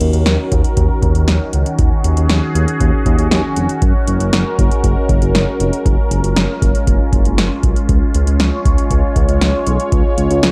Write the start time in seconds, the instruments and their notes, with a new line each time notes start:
Already playing: analog synth pad D#3 C#4 F#4 A#4
0.01 analog synth bass D#2, closed hi-hat
0.13 analog synth bass D#2, closed hi-hat
0.26 analog synth bass D#2, snare, closed hi-hat
0.52 analog synth bass D#2, kick, closed hi-hat
0.64 closed hi-hat
0.77 analog synth bass D#2, kick, closed hi-hat
1.02 analog synth bass D#2, kick, closed hi-hat
1.15 analog synth bass D#2, closed hi-hat
1.28 analog synth bass D#2, snare, closed hi-hat
1.53 analog synth bass C#2, closed hi-hat
1.66 closed hi-hat
1.79 analog synth bass D#2, analog synth pad G#4, kick, closed hi-hat
2.04 analog synth bass D#2, closed hi-hat
2.17 analog synth bass D#2, closed hi-hat
2.29 analog synth bass D#2, snare, closed hi-hat
2.55 analog synth bass D#2, closed hi-hat
2.68 closed hi-hat
2.80 analog synth bass D#2, kick, closed hi-hat
3.06 analog synth bass D#2, kick, closed hi-hat
3.19 analog synth bass D#2, closed hi-hat
3.31 analog synth bass D#2, snare, closed hi-hat
3.56 analog synth bass F1, closed hi-hat
3.69 closed hi-hat
3.82 analog synth bass F#1, analog synth pad G#3 A#4, kick, closed hi-hat
4.07 analog synth bass F#1, closed hi-hat
4.20 analog synth bass F#1, closed hi-hat
4.33 analog synth bass F#1, snare, closed hi-hat
4.59 analog synth bass F#1, kick, closed hi-hat
4.71 closed hi-hat
4.84 analog synth bass F#1, kick, closed hi-hat
5.09 analog synth bass F#1, kick, closed hi-hat
5.22 analog synth bass F#1, closed hi-hat
5.35 analog synth bass F#1, snare, closed hi-hat
5.60 analog synth bass F1, closed hi-hat
5.73 closed hi-hat
5.86 analog synth bass F#1, analog synth pad F4, kick, closed hi-hat
6.11 analog synth bass F#1, closed hi-hat
6.24 analog synth bass F#1, closed hi-hat
6.36 analog synth bass F#1, snare, closed hi-hat
6.62 analog synth bass F#1, kick, closed hi-hat
6.75 closed hi-hat
6.87 analog synth bass F#1, kick, closed hi-hat
7.13 analog synth bass F#1, kick, closed hi-hat
7.25 analog synth bass F#1, closed hi-hat
7.38 analog synth bass F#1, snare, closed hi-hat
7.63 analog synth bass B1, kick, closed hi-hat
7.76 closed hi-hat
7.89 analog synth bass C#2, analog synth pad C#5, kick, closed hi-hat
8.14 analog synth bass C#2, closed hi-hat
8.27 analog synth bass C#2, closed hi-hat
8.40 analog synth bass C#2, snare, closed hi-hat
8.65 analog synth bass C#2, kick, closed hi-hat
8.78 closed hi-hat
8.91 analog synth bass C#2, kick, closed hi-hat
9.16 analog synth bass C#2, kick, closed hi-hat
9.29 analog synth bass C#2, closed hi-hat
9.41 analog synth bass C#2, snare, closed hi-hat
9.67 analog synth bass B1, closed hi-hat
9.80 closed hi-hat
9.92 analog synth bass C#2, kick, closed hi-hat
10.18 analog synth bass C#2, closed hi-hat
10.30 analog synth bass C#2, closed hi-hat
10.43 analog synth bass C#2, snare, closed hi-hat